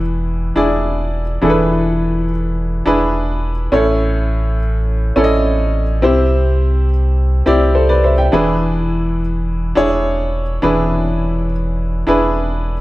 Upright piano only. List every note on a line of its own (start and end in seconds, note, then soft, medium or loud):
0.00 1.42 E3 medium
0.00 0.56 D4 medium
0.00 0.56 E4 medium
0.00 0.56 G#4 medium
0.00 1.50 B4 medium
0.56 1.21 D4 medium
0.56 1.21 E4 medium
0.56 1.22 G#4 medium
0.56 1.22 D5 medium
1.42 2.25 E3 medium
1.42 2.29 D4 medium
1.42 2.29 E4 medium
1.42 2.29 G#4 medium
1.42 1.50 A4 medium
1.50 2.33 B4 medium
2.86 3.51 D4 medium
2.86 3.51 E4 medium
2.86 3.52 G#4 medium
2.86 3.52 B4 medium
3.72 4.55 A2 medium
3.72 4.59 C#4 medium
3.72 4.59 E4 medium
3.72 4.60 A4 medium
3.72 4.60 C#5 medium
5.16 5.81 C#4 medium
5.16 5.82 E4 medium
5.16 5.82 A4 medium
5.16 5.24 D5 medium
5.24 5.85 D#5 medium
6.02 6.85 C3 medium
6.02 6.89 C4 medium
6.02 6.90 E4 medium
6.02 6.90 G4 medium
6.02 6.90 C5 medium
7.46 8.12 C4 medium
7.46 8.12 E4 medium
7.46 8.12 G4 medium
7.46 7.76 D5 medium
7.75 7.89 A4 medium
7.75 7.89 C5 medium
7.89 8.04 B4 medium
7.89 8.03 D5 medium
8.04 8.18 C5 medium
8.04 8.17 E5 medium
8.18 8.46 E5 medium
8.18 8.46 G5 medium
8.32 9.15 E3 medium
8.32 9.20 D4 medium
8.32 9.20 E4 medium
8.32 9.20 G#4 medium
8.32 9.20 B4 medium
9.75 10.42 D4 medium
9.75 10.42 E4 medium
9.75 10.42 G#4 medium
9.75 10.42 C#5 loud
10.62 11.46 E3 medium
10.62 11.50 D4 medium
10.62 11.50 E4 medium
10.62 11.50 G#4 medium
10.62 11.51 B4 medium
12.07 12.73 D4 medium
12.07 12.73 E4 medium
12.07 12.73 G#4 medium
12.07 12.73 B4 medium